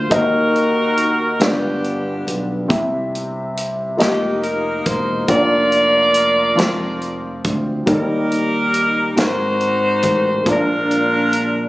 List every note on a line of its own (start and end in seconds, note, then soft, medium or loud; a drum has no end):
0.00 0.12 C5 loud
0.10 1.36 D#2 loud
0.10 1.36 D#3 medium
0.10 1.40 A#3 medium
0.10 1.40 D#4 medium
0.10 1.37 D#4 medium
0.10 1.40 F#4 medium
0.10 1.37 F#4 medium
0.10 1.41 A#4 loud
0.10 1.41 D#5 medium
0.10 kick loud
0.10 closed hi-hat medium
0.56 closed hi-hat medium
0.98 closed hi-hat medium
1.39 2.22 G1 medium
1.39 2.66 G2 medium
1.39 2.69 B3 medium
1.39 2.70 F4 medium
1.39 2.68 G4 medium
1.39 2.38 G4 medium
1.39 2.71 D5 medium
1.39 snare loud
1.39 closed hi-hat medium
1.44 2.67 B3 medium
1.44 2.67 D4 medium
1.84 closed hi-hat soft
2.27 2.66 B1 medium
2.27 closed hi-hat medium
2.68 3.95 C2 loud
2.68 3.95 C3 medium
2.68 3.98 C4 medium
2.68 3.99 E4 medium
2.68 3.97 G4 medium
2.68 4.00 E5 medium
2.68 kick loud
2.68 closed hi-hat medium
3.15 closed hi-hat medium
3.57 closed hi-hat medium
3.97 4.81 F1 medium
3.97 5.26 A#3 medium
3.97 5.27 F4 medium
3.97 5.28 G4 medium
3.97 4.40 G4 medium
3.97 5.29 D#5 medium
3.97 closed hi-hat medium
4.01 5.26 A#3 medium
4.01 5.26 D#4 medium
4.01 snare loud
4.43 4.86 A#4 medium
4.43 closed hi-hat soft
4.85 5.25 E1 medium
4.85 5.29 C5 medium
4.85 kick medium
4.85 closed hi-hat medium
5.27 6.54 F1 loud
5.27 6.57 A#3 medium
5.27 6.58 D4 soft
5.27 6.55 F4 medium
5.27 7.40 F4 medium
5.27 7.40 A#4 medium
5.27 5.35 C#5 medium
5.27 7.44 D5 loud
5.27 kick loud
5.27 closed hi-hat medium
5.36 6.62 D5 medium
5.72 closed hi-hat medium
6.14 closed hi-hat medium
6.55 7.40 F1 medium
6.55 7.86 F3 medium
6.55 7.87 C4 medium
6.55 7.87 F4 medium
6.55 7.87 C5 medium
6.55 closed hi-hat medium
6.60 snare loud
7.02 closed hi-hat soft
7.44 7.84 D2 medium
7.44 kick medium
7.44 closed hi-hat medium
7.86 9.13 D#2 loud
7.86 9.12 D#3 medium
7.86 9.16 G3 medium
7.86 9.16 A#3 medium
7.86 9.17 D#4 medium
7.86 9.13 D#4 medium
7.86 9.14 G4 medium
7.86 9.17 A#4 medium
7.86 9.14 A#4 loud
7.86 kick loud
7.86 closed hi-hat medium
8.32 closed hi-hat medium
8.74 closed hi-hat medium
9.16 9.99 G#1 medium
9.16 10.42 G#2 medium
9.16 10.46 G#3 medium
9.16 10.46 C4 soft
9.16 10.42 D#4 medium
9.16 10.46 F#4 soft
9.16 10.43 F#4 medium
9.16 9.24 A4 medium
9.16 10.47 C5 loud
9.16 snare medium
9.16 closed hi-hat medium
9.25 10.50 A#4 medium
9.61 closed hi-hat soft
10.03 10.43 A1 medium
10.03 kick medium
10.03 closed hi-hat medium
10.44 11.69 A#1 loud
10.44 11.69 A#2 medium
10.44 11.69 A#3 medium
10.44 11.69 D4 medium
10.44 11.69 F4 medium
10.44 kick loud
10.44 closed hi-hat medium
10.49 11.69 D4 medium
10.49 11.69 F4 medium
10.49 11.69 A#4 loud
10.49 11.69 D5 medium
10.91 closed hi-hat soft
11.33 closed hi-hat medium